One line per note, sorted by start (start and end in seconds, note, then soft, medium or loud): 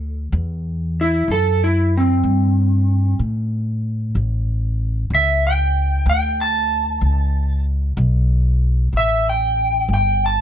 0.00 0.30 D2 medium
0.32 1.25 E2 medium
1.01 1.30 E4 medium
1.28 2.21 F#2 medium
1.28 1.61 A4 medium
1.64 1.93 E4 medium
1.97 3.19 C4 medium
2.23 3.17 G2 medium
3.19 4.12 A2 medium
4.15 5.08 A1 medium
5.10 6.03 C#2 medium
5.15 5.44 E5 medium
5.47 6.07 G5 medium
6.06 6.99 D2 medium
6.06 6.39 G5 medium
6.41 7.64 A5 medium
7.01 7.94 C#2 medium
7.97 8.90 B1 medium
8.93 9.86 A1 medium
8.97 9.26 E5 medium
9.29 9.89 G5 medium
9.88 10.41 G1 medium
9.94 10.22 G5 medium
10.26 10.41 A5 medium